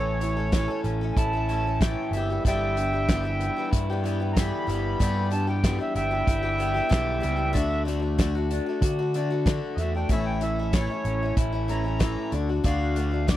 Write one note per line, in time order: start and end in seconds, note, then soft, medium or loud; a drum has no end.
0.00 0.66 A1 loud
0.00 0.21 A2 medium
0.00 0.20 E3 medium
0.00 0.21 A3 medium
0.00 0.21 C#4 medium
0.00 0.22 A4 medium
0.00 0.81 C#5 loud
0.21 0.37 E3 medium
0.21 0.38 A3 medium
0.21 0.37 C#4 medium
0.21 0.35 A4 medium
0.21 closed hi-hat medium
0.37 0.53 A3 soft
0.37 0.53 C#4 soft
0.37 0.53 A4 medium
0.52 0.69 A2 medium
0.52 0.69 E3 medium
0.52 0.69 A3 medium
0.52 0.69 C#4 medium
0.52 0.67 A4 loud
0.52 kick loud
0.52 snare loud
0.52 closed hi-hat medium
0.68 1.02 A3 soft
0.68 1.02 C#4 medium
0.68 1.00 A4 medium
0.84 1.10 A1 medium
0.84 1.47 C#4 medium
0.84 closed hi-hat medium
1.01 1.34 A3 soft
1.01 1.34 C#4 medium
1.01 1.32 A4 medium
1.13 1.95 A1 loud
1.13 2.79 E4 medium
1.13 1.17 G#5 medium
1.13 kick loud
1.17 1.79 A5 loud
1.17 closed hi-hat medium
1.33 1.49 A3 soft
1.33 1.50 C#4 medium
1.33 1.49 A4 medium
1.49 1.65 E3 medium
1.49 1.66 A3 medium
1.49 1.66 C#4 medium
1.49 1.64 A4 medium
1.49 closed hi-hat medium
1.65 1.81 A3 soft
1.65 1.82 C#4 soft
1.65 1.81 A4 soft
1.81 2.13 A2 medium
1.81 2.12 E3 medium
1.81 2.13 A3 medium
1.81 2.14 C#4 medium
1.81 2.14 A4 medium
1.81 2.12 G5 medium
1.81 kick loud
1.81 snare loud
1.81 closed hi-hat medium
2.11 2.37 G1 medium
2.11 2.44 G2 medium
2.11 2.29 E3 medium
2.11 2.43 E5 medium
2.11 closed hi-hat medium
2.15 2.30 G3 medium
2.15 2.30 B3 medium
2.15 2.29 G4 medium
2.30 2.46 E3 soft
2.30 2.46 G3 soft
2.30 2.46 B3 soft
2.30 2.45 G4 soft
2.45 3.49 G1 loud
2.45 2.77 G2 medium
2.45 2.78 D3 medium
2.45 2.75 E3 medium
2.45 2.77 G3 medium
2.45 2.78 B3 medium
2.45 2.78 G4 medium
2.45 3.69 E5 medium
2.45 3.70 G5 loud
2.45 kick loud
2.45 closed hi-hat medium
2.76 4.36 D3 medium
2.76 2.92 E3 medium
2.76 2.93 G3 medium
2.76 2.93 B3 medium
2.76 2.92 G4 medium
2.76 closed hi-hat medium
2.93 3.09 E3 soft
2.93 3.10 G3 soft
2.93 3.09 B3 soft
2.93 3.09 G4 medium
3.09 3.25 G2 medium
3.09 3.25 D3 medium
3.09 3.25 E3 medium
3.09 3.25 G3 medium
3.09 3.24 B3 medium
3.09 3.22 G4 medium
3.09 kick loud
3.09 snare loud
3.09 closed hi-hat loud
3.23 3.58 E3 soft
3.23 3.57 G3 medium
3.23 3.57 B3 medium
3.23 3.55 G4 medium
3.40 4.02 B3 medium
3.40 closed hi-hat medium
3.56 3.90 E3 soft
3.56 3.90 G3 medium
3.56 3.89 B3 medium
3.56 3.88 G4 medium
3.71 4.50 G2 loud
3.71 5.31 E4 medium
3.71 kick loud
3.71 closed hi-hat medium
3.90 4.03 E3 medium
3.90 4.04 G3 medium
3.90 4.05 B3 medium
3.90 4.05 G4 medium
4.04 4.20 E3 medium
4.04 4.21 G3 medium
4.04 4.20 B3 medium
4.04 4.19 G4 medium
4.04 closed hi-hat medium
4.20 4.36 E3 soft
4.20 4.37 G3 soft
4.20 4.37 B3 soft
4.20 4.36 G4 medium
4.33 4.68 G2 medium
4.33 4.36 A#5 medium
4.33 kick loud
4.33 closed hi-hat loud
4.37 4.69 D3 medium
4.37 4.66 E3 medium
4.37 4.67 G3 medium
4.37 4.68 B3 medium
4.37 4.69 G4 medium
4.37 5.29 B5 loud
4.37 snare loud
4.67 4.94 G1 medium
4.67 4.99 E3 medium
4.67 5.00 G3 medium
4.67 5.00 B3 medium
4.67 5.01 G4 medium
4.67 closed hi-hat medium
5.00 5.32 G2 medium
5.00 5.78 G2 loud
5.00 5.32 D3 medium
5.00 5.29 E3 medium
5.00 5.31 G3 medium
5.00 5.31 B3 medium
5.00 5.33 G4 medium
5.00 kick loud
5.00 closed hi-hat medium
5.30 6.91 D3 medium
5.30 5.47 E3 medium
5.30 5.48 G3 medium
5.30 5.47 B3 medium
5.30 5.47 A5 medium
5.30 closed hi-hat medium
5.35 5.46 G4 medium
5.47 5.63 E3 soft
5.47 5.64 G3 soft
5.47 5.64 B3 medium
5.47 5.63 G4 medium
5.47 5.79 G5 medium
5.64 5.80 G2 medium
5.64 5.80 D3 medium
5.64 5.80 E3 medium
5.64 5.80 G3 medium
5.64 5.79 B3 medium
5.64 5.77 G4 medium
5.64 kick loud
5.64 snare loud
5.64 closed hi-hat medium
5.78 6.12 G3 soft
5.78 6.11 B3 soft
5.78 6.10 G4 soft
5.78 5.94 E5 medium
5.82 6.13 E3 soft
5.95 6.21 G1 loud
5.95 6.58 B3 medium
5.95 7.83 E5 loud
5.95 7.51 G5 loud
5.95 closed hi-hat medium
6.11 6.45 E3 soft
6.11 6.44 G3 soft
6.11 6.43 B3 medium
6.11 6.41 G4 medium
6.27 6.79 G1 loud
6.27 7.55 E4 medium
6.27 kick loud
6.27 closed hi-hat medium
6.43 6.57 E3 soft
6.43 6.58 G3 medium
6.43 6.59 B3 medium
6.43 6.59 G4 medium
6.58 6.75 E3 medium
6.58 6.75 G3 medium
6.58 6.74 B3 medium
6.58 6.73 G4 medium
6.58 closed hi-hat medium
6.74 6.89 E3 soft
6.74 6.89 G3 medium
6.74 6.90 B3 medium
6.74 6.90 G4 medium
6.74 snare soft
6.89 7.20 B1 medium
6.89 7.22 G2 medium
6.89 7.22 D3 medium
6.89 7.19 E3 medium
6.89 7.20 G3 medium
6.89 7.22 B3 medium
6.89 7.23 G4 medium
6.89 kick loud
6.89 snare loud
6.89 closed hi-hat medium
7.20 7.52 C#2 medium
7.20 7.38 E3 medium
7.20 7.37 G3 medium
7.20 7.36 B3 medium
7.20 7.35 G4 medium
7.20 closed hi-hat medium
7.36 7.53 E3 soft
7.36 7.53 G3 soft
7.36 7.54 B3 soft
7.36 7.53 G4 soft
7.53 8.58 D2 loud
7.53 7.84 D3 medium
7.53 7.85 A3 loud
7.53 7.87 D4 medium
7.53 7.88 F#4 loud
7.53 kick loud
7.53 closed hi-hat medium
7.85 8.02 D3 medium
7.85 8.02 A3 medium
7.85 8.01 D4 medium
7.85 7.98 F#4 medium
7.85 closed hi-hat medium
8.00 8.18 A3 soft
8.00 8.18 D4 medium
8.00 8.17 F#4 medium
8.18 8.35 D3 medium
8.18 8.35 A3 medium
8.18 8.35 D4 medium
8.18 8.34 F#4 medium
8.18 kick loud
8.18 snare loud
8.18 closed hi-hat medium
8.35 8.68 A3 soft
8.35 8.68 D4 medium
8.35 8.65 F#4 medium
8.51 9.14 D4 medium
8.51 closed hi-hat medium
8.66 9.00 A3 soft
8.66 8.99 D4 medium
8.66 8.98 F#4 medium
8.81 9.60 D3 loud
8.81 10.10 F#4 medium
8.81 kick loud
8.81 closed hi-hat medium
8.99 9.14 A3 soft
8.99 9.15 D4 medium
8.99 9.15 F#4 medium
9.14 9.31 D3 medium
9.14 9.31 A3 medium
9.14 9.31 D4 medium
9.14 closed hi-hat medium
9.18 9.29 F#4 medium
9.30 9.46 A3 medium
9.30 9.46 D4 medium
9.30 9.46 F#4 medium
9.46 9.77 D3 medium
9.46 9.78 A3 medium
9.46 9.79 D4 medium
9.46 9.79 F#4 medium
9.46 kick loud
9.46 snare loud
9.46 closed hi-hat medium
9.74 10.03 E2 medium
9.74 9.78 D#5 medium
9.74 closed hi-hat medium
9.79 9.94 D3 medium
9.79 9.95 A3 medium
9.79 9.95 D4 medium
9.79 9.93 F#4 medium
9.79 9.93 E5 medium
9.95 10.10 A3 soft
9.95 10.11 D4 soft
9.95 10.10 F#4 soft
9.95 10.10 G5 medium
10.09 10.87 A1 loud
10.09 10.42 A2 medium
10.09 10.41 E3 medium
10.09 10.42 A3 medium
10.09 10.43 C#4 medium
10.09 10.43 E4 medium
10.09 10.25 E5 medium
10.09 kick loud
10.09 closed hi-hat medium
10.25 10.41 G5 medium
10.41 10.58 E3 medium
10.41 10.59 A3 medium
10.41 10.59 C#4 medium
10.41 10.73 E5 medium
10.41 closed hi-hat medium
10.46 10.58 E4 medium
10.59 10.75 A3 soft
10.59 10.75 C#4 soft
10.59 10.75 E4 medium
10.73 10.91 A2 medium
10.73 10.91 E3 medium
10.73 10.91 A3 medium
10.73 10.90 C#4 medium
10.73 11.35 C#5 loud
10.73 kick loud
10.73 snare loud
10.73 closed hi-hat medium
10.78 10.89 E4 medium
10.90 11.24 A3 soft
10.90 11.23 C#4 soft
10.90 11.21 E4 medium
11.05 11.31 A1 loud
11.05 11.69 C#4 medium
11.05 closed hi-hat medium
11.23 11.54 A3 soft
11.23 11.53 C#4 soft
11.23 11.51 E4 medium
11.37 12.15 A1 loud
11.37 12.33 E4 medium
11.37 kick loud
11.37 closed hi-hat medium
11.52 11.68 A3 soft
11.52 11.69 C#4 soft
11.52 11.69 E4 medium
11.68 11.85 E3 medium
11.68 11.85 A3 medium
11.68 11.85 C#4 medium
11.68 11.83 E4 medium
11.68 12.32 A#5 loud
11.68 closed hi-hat medium
11.84 12.00 A3 soft
11.84 12.01 C#4 soft
11.84 12.01 E4 medium
11.99 12.32 A2 medium
11.99 12.32 E3 medium
11.99 12.33 A3 medium
11.99 12.33 C#4 medium
11.99 12.34 E4 medium
11.99 kick loud
11.99 snare loud
11.99 closed hi-hat medium
12.32 12.59 D2 medium
12.32 12.49 D3 medium
12.32 12.50 A3 medium
12.32 12.49 D4 medium
12.32 12.48 F#4 medium
12.32 closed hi-hat medium
12.49 12.64 A3 soft
12.49 12.64 D4 medium
12.49 12.65 F#4 soft
12.64 13.37 D2 loud
12.64 12.95 D3 medium
12.64 12.96 A3 medium
12.64 12.97 D4 medium
12.64 12.97 F#4 loud
12.64 13.27 F5 loud
12.64 kick loud
12.64 closed hi-hat medium
12.96 13.13 D3 medium
12.96 13.13 A3 medium
12.96 13.12 D4 medium
12.96 13.10 F#4 medium
12.96 closed hi-hat medium
13.12 13.27 A3 soft
13.12 13.28 D4 soft
13.12 13.28 F#4 soft
13.28 13.37 D3 medium
13.28 13.37 A3 medium
13.28 13.37 D4 medium
13.28 13.37 F#4 medium
13.28 13.37 D5 loud
13.28 kick loud
13.28 snare loud
13.28 closed hi-hat medium